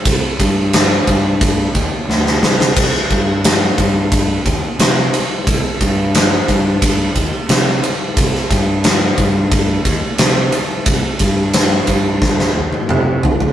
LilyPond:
<<
  \new Staff \with { instrumentName = "Fingered electric bass" } { \clef bass \time 4/4 \key c \minor \tempo 4 = 89 c,16 r16 g,4 g,4 ees,16 r16 d,8 c,8 | c,16 r16 g,4 g,4 ees,16 r16 c8 r8 | c,16 r16 g,4 g,4 ees,16 r16 c8 r8 | c,16 r16 g,4 g,4 ees,16 r16 c8 r8 |
c,16 r16 g,4 g,4 ees,16 r16 c8 r8 | }
  \new DrumStaff \with { instrumentName = "Drums" } \drummode { \time 4/4 <bd cymr>8 <bd cymr>8 <cymr sn>8 <bd cymr>8 <bd cymr>8 <bd cymr>8 sn16 sn16 sn16 sn16 | <cymc bd cymr>16 sn16 <bd cymr>8 <cymr sn>8 <bd cymr>8 <bd cymr>8 <bd cymr>8 <cymr sn>8 cymr8 | <bd cymr>8 <bd cymr>8 <cymr sn>8 <bd cymr>8 <bd cymr>8 <bd cymr>8 <cymr sn>8 cymr8 | <bd cymr>16 sn16 <bd cymr>8 <cymr sn>8 <bd cymr>8 <bd cymr>8 <bd cymr>8 <cymr sn>8 cymr8 |
<bd cymr>8 <bd cymr>8 <cymr sn>8 <bd cymr>8 <bd sn>16 sn8 tommh16 toml8 tomfh16 tomfh16 | }
>>